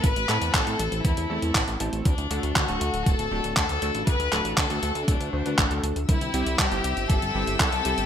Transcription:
<<
  \new Staff \with { instrumentName = "String section" } { \time 4/4 \key d \mixolydian \tempo 4 = 119 r1 | r1 | r1 | <c' e'' g'' e'''>1 | }
  \new Staff \with { instrumentName = "Violin section" } { \time 4/4 \key d \mixolydian b'4 a'4 e'4. r8 | d'4 fis'4 a'4 a'4 | b'4 a'4 d'4. r8 | e'4 g'4 a'4 a'4 | }
  \new Staff \with { instrumentName = "Electric grand piano" } { \time 4/4 \key d \mixolydian r8 <a c' e' a'>8. <a c' e' a'>16 <a c' e' a'>4 <a c' e' a'>8 r8 <a c' e' a'>8 | r8 <a d' fis' a'>8. <a d' fis' a'>16 <a d' fis' a'>4 <a d' fis' a'>8 r8 <a d' fis' a'>8 | r8 <a d' fis' a'>8. <a d' fis' a'>16 <a d' fis' a'>4 <a d' fis' c''>16 <a d' fis' b'>16 r16 <a d' fis' a'>16 <a d' fis' a'>16 r16 | r8 <g c' e' g'>8. <g c' e' g'>16 <g c' e' g'>4 <g c' e' g'>8 r8 <g c' e' g'>8 | }
  \new Staff \with { instrumentName = "Analog synth bass" } { \clef bass \time 4/4 \key d \mixolydian a,,16 a,,16 a,16 e,16 a,,16 a,,16 a,,16 a,,16 e,16 e,16 e,16 e,16 a,,16 a,,16 a,,16 a,,16 | d,16 d,16 d,16 d,16 d,16 d,,16 d,16 d,,16 d,,16 d,,16 d,,16 d,,16 d,16 d,16 d,16 a,,16 | d,16 d,16 d,,16 a,,16 d,16 d,16 d,16 d,16 d,,16 d,16 d,16 d,16 a,,16 d,16 d,16 d,16 | c,16 c,16 c,16 c,16 c,16 g,,16 c,16 g,,16 g,,16 g,,16 g,,16 g,,16 c,16 c,16 c,16 g,,16 | }
  \new DrumStaff \with { instrumentName = "Drums" } \drummode { \time 4/4 <hh bd>16 hh16 <hc hh>16 hh16 <hc hh bd>16 hh16 hh16 hh16 <hh bd>16 hh8 hh16 <hc hh bd>16 hh16 hh16 hh16 | <hh bd>16 hh16 hh16 hh16 <hc hh bd>16 hh16 hh16 hh16 <hh bd>16 hh8 hh16 <hc hh bd>16 hh16 hh16 hh16 | <hh bd>16 hh16 <hc hh>16 hh16 <hc hh bd>16 hh16 hh16 hh16 <hh bd>16 hh8 hh16 <hc hh bd>16 hh16 hh16 hh16 | <hh bd tommh>16 hh16 hh16 hh16 <hc hh bd>16 hh16 hh16 hh16 <hh bd>16 hh8 hh16 <hc hh bd>16 hh16 hh16 hh16 | }
>>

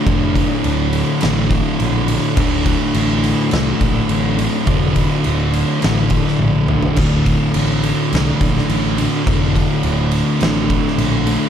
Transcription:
<<
  \new Staff \with { instrumentName = "Tonewheel organ" } { \time 4/4 \key c \dorian \tempo 4 = 104 <d a d'>1~ | <d a d'>1~ | <d a d'>1~ | <d a d'>1~ |
<d a d'>1 | }
  \new Staff \with { instrumentName = "Distorted electric guitar" } { \clef bass \time 4/4 \key c \dorian <d, a, d>2.~ <d, a, d>8 <d, a, d>8 | <d, a, d>2.~ <d, a, d>8 <d, a, d>8 | <d, a, d>2.~ <d, a, d>8 <d, a, d>8 | <d, a, d>2.~ <d, a, d>8 <d, a, d>8 |
<d, a, d>2.~ <d, a, d>8 <d, a, d>8 | }
  \new Staff \with { instrumentName = "Distorted electric guitar" } { \clef bass \time 4/4 \key c \dorian <d, a, d>2 <d, a, d>2 | <d, a, d>2 <d, a, d>2 | <d, a, d>2 <d, a, d>2 | <d, a, d>2 <d, a, d>2 |
<d, a, d>2 <d, a, d>2 | }
  \new Staff \with { instrumentName = "Picked electric bass" } { \clef bass \time 4/4 \key c \dorian f,,4 d,,4 a,,4 bes,,4 | d,,4 a,,4 c,8 bes,,8 a,,4 | f,,4 d,,4 a,,4 bes,,4 | d,,4 a,,4 c,8 bes,,8 a,,4 |
f,,4 d,,4 a,,4 bes,,4 | }
  \new DrumStaff \with { instrumentName = "Drums" } \drummode { \time 4/4 <bd cymr>8 <bd cymr>8 cymr8 cymr8 <cymr sn>8 <bd cymr>8 cymr8 cymr8 | <bd cymr>8 <bd cymr>8 cymr8 cymr8 <cymr sn>8 <bd cymr>8 cymr8 cymr8 | <bd cymr>8 <bd cymr>8 cymr8 cymr8 <cymr sn>8 <bd cymr>16 sn16 tommh8 toml16 tomfh16 | <cymc bd cymr>8 <bd cymr>8 cymr8 cymr8 <cymr sn>8 <bd cymr>16 sn16 cymr8 cymr8 |
<bd cymr>8 <bd cymr>8 cymr8 cymr8 <cymr sn>8 <bd cymr>16 sn16 cymr8 cymr8 | }
>>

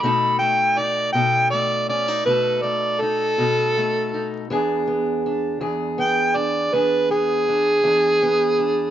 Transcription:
<<
  \new Staff \with { instrumentName = "Harmonica" } { \time 12/8 \key e \mixolydian \tempo 4. = 54 b''8 g''8 d''8 g''8 d''8 d''8 b'8 d''8 a'2 | r2 g''8 d''8 b'8 gis'2~ gis'8 | }
  \new Staff \with { instrumentName = "Steel-string acoustic guitar" } { \time 12/8 \key e \mixolydian << { <a dis' a'>8 a8 dis'8 a'8 a8 cis'16 dis'16 <a dis' a'>8 a8 dis'8 dis'8 a8 dis'8 | <b d' gis'>8 b8 d'8 gis'8 b8 d'8 <b d' gis'>8 b8 d'8 d'8 b8 d'8 | } \\ { b,4. b,4. b,4. b,4. | e,4. e,4. e,4. e,4. | } >> }
>>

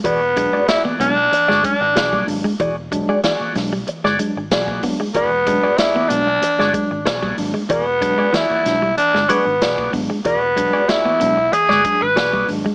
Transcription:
<<
  \new Staff \with { instrumentName = "Clean electric guitar" } { \time 4/4 \key e \mixolydian \tempo 4 = 94 <fis' gis' d''>16 r8 <fis' gis' d''>16 <fis' gis' d''>8 r8. <fis' gis' d''>16 r8 <fis' gis' d''>8 r8 | <fis' gis' d''>16 r8 <fis' gis' d''>16 <fis' gis' d''>8 r8. <fis' gis' d''>16 r8 <fis' gis' d''>8 r8 | <fis' gis' d''>16 r8 <fis' gis' d''>16 <fis' gis' d''>8 r8. <fis' gis' d''>16 r8 <fis' gis' d''>8 r8 | <fis' gis' d''>16 r8 <fis' gis' d''>16 <fis' gis' d''>8 r4 <fis' gis' d''>16 r16 <fis' gis' d''>8 r8 |
<fis' gis' d''>16 r8 <fis' gis' d''>16 <fis' gis' d''>8 r8. <fis' gis' d''>16 r8 <fis' gis' d''>8 r8 | }
  \new Staff \with { instrumentName = "Tenor saxophone" } { \time 4/4 \key e \mixolydian b4 e'8 d'4 d'4 r8 | r1 | b4 e'8 d'4. r4 | b4 e'4 d'8 b4 r8 |
b4 e'4 gis'8. b'8. r8 | }
  \new Staff \with { instrumentName = "Clean electric guitar" } { \clef bass \time 4/4 \key e \mixolydian e16 r16 gis16 r8 b16 b16 r8 gis16 gis16 r8 g16 r16 gis16 | e16 r8 gis16 e16 r8 g16 r16 gis16 gis16 r8. b16 gis16 | e16 r16 gis16 r8 b16 b16 r8 gis16 gis16 r8 g16 r16 gis16 | e16 r8 gis16 e16 r8 g16 r16 gis16 gis16 r8. b16 gis16 |
e16 r16 gis16 r8 b16 b16 r8 gis16 gis16 r8 g16 r16 gis16 | }
  \new Staff \with { instrumentName = "Tine electric piano" } { \clef bass \time 4/4 \key e \mixolydian e16 r16 <fis gis d'>16 <gis d'>16 <gis d'>16 e16 <fis gis d'>16 r16 e16 r16 <fis gis d'>16 <gis d'>16 e16 r16 <fis gis d'>16 <gis d'>16 | e16 r16 <fis gis d'>16 <gis d'>16 <gis d'>16 e16 <fis gis d'>16 r16 e16 r16 <fis gis d'>16 <gis d'>16 e16 r16 <fis gis d'>16 <gis d'>16 | e16 r16 <fis gis d'>16 <gis d'>16 <gis d'>16 e16 <fis gis d'>16 r16 e16 r16 <fis gis d'>16 <gis d'>16 e16 r16 <fis gis d'>16 <gis d'>16 | e16 r16 <fis gis d'>16 <gis d'>16 <gis d'>16 e16 <fis gis d'>16 r16 e16 r16 <fis gis d'>16 <gis d'>16 e16 r16 <fis gis d'>16 <gis d'>16 |
e16 r16 <fis gis d'>16 <gis d'>16 <gis d'>16 e16 <fis gis d'>16 r16 e16 r16 <fis gis d'>16 <gis d'>16 e16 r16 <fis gis d'>16 <gis d'>16 | }
  \new Staff \with { instrumentName = "Fingered electric bass" } { \clef bass \time 4/4 \key e \mixolydian e,,8. r8. b,,8 r16 g,,16 r16 gis,,16 b,,8 gis,,16 r16 | e,,8. r8. b,,8 r16 g,,16 r16 gis,,16 b,,8 r8 | e,,8. r8. b,,8 r16 g,,16 r16 gis,,16 b,,8 gis,,16 r16 | e,,8. r8. b,,8 r16 g,,16 r16 gis,,16 b,,8 gis,,16 r16 |
e,,8. r8. b,,8 r16 g,,16 r16 gis,,16 b,,8 gis,,16 r16 | }
  \new DrumStaff \with { instrumentName = "Drums" } \drummode { \time 4/4 <hh bd>8 <hh bd>8 <hh sn>8 hh8 hh16 sn16 <hh bd>8 <hh sn>16 bd16 hho8 | <hh bd>8 <hh bd>8 <hh sn>8 <hho sn>8 hh16 sn16 hh8 <hh sn>16 bd16 <hho bd>8 | <hh bd>8 <hh bd>8 <hh sn>8 hh8 hh16 sn16 <hh bd>8 <hh sn>16 bd16 hho8 | <hh bd>8 <hh bd>8 <hh sn>8 <hh sn>8 hh16 sn16 hh8 <hh sn>16 bd16 <hho bd>8 |
<hh bd>8 <hh bd>8 <hh sn>8 hh8 hh16 sn16 <hh bd>8 <hh sn>16 bd16 hho8 | }
>>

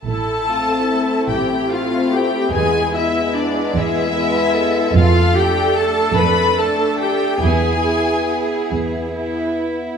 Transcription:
<<
  \new Staff \with { instrumentName = "Violin section" } { \time 6/8 \key a \minor \tempo 4. = 48 a''4. g''8 f''8 g''8 | gis''8 e''8 d''8 e''4. | f''8 g''8 a''8 b''8 a''8 g''8 | gis''4. r4. | }
  \new Staff \with { instrumentName = "Cello section" } { \time 6/8 \key a \minor e'8 f'8 e'2~ | e'4. gis'8 b'8 a'8~ | a'2. | gis'2~ gis'16 r8. | }
  \new Staff \with { instrumentName = "Viola section" } { \time 6/8 \key a \minor a'4. g'8 f'8 g'8 | gis'8 e'8 d'8 e'4. | f'8 g'8 a'8 b'8 a'8 g'8 | gis'4. r4. | }
  \new Staff \with { instrumentName = "Violin section" } { \time 6/8 \key a \minor r8 <a c'>4. <a c'>4 | <gis b>8 <gis b>4. <gis b>4 | r8 <a d'>4. <a d'>4 | <b e'>8 <b e'>4. <b e'>4 | }
  \new Staff \with { instrumentName = "Double bass section" } { \clef bass \time 6/8 \key a \minor a,,4. a,,4. | e,4. e,4. | f,4. f,4. | e,4. e,4. | }
>>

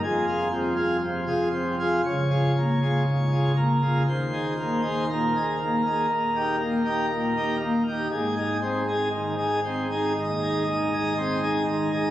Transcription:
<<
  \new Staff \with { instrumentName = "Pipe organ" } { \time 4/4 \key aes \major \tempo 4 = 60 << { aes'2 des''4. bes'8 | c''4 bes'2~ bes'8 r8 | aes'2 ees''2 | } \\ { f,16 <f' aes'>16 c'16 <f' aes'>16 c16 <f' aes'>16 c'16 <f' aes'>16 des,16 <f' aes'>16 bes16 <f' aes'>16 aes,16 <f' aes'>16 bes16 <f' aes'>16 | ees,16 <ees' aes'>16 bes16 <ees' aes'>16 bes,16 <ees' aes'>16 bes16 <ees' aes'>16 ees,16 <ees' g'>16 bes16 <ees' g'>16 bes,16 <ees' g'>16 bes16 <ees' g'>16 | aes,16 <ees' aes'>16 c'16 <ees' aes'>16 ees16 <ees' aes'>16 c'16 <ees' aes'>16 ees,16 <ees' aes'>16 ees16 <ees' aes'>16 c'16 <ees' aes'>16 ees16 <ees' aes'>16 | } >> }
  \new Staff \with { instrumentName = "Pipe organ" } { \clef bass \time 4/4 \key aes \major f,,2 des,,2 | ees,,2 ees,,2 | aes,,2 ees,,2 | }
>>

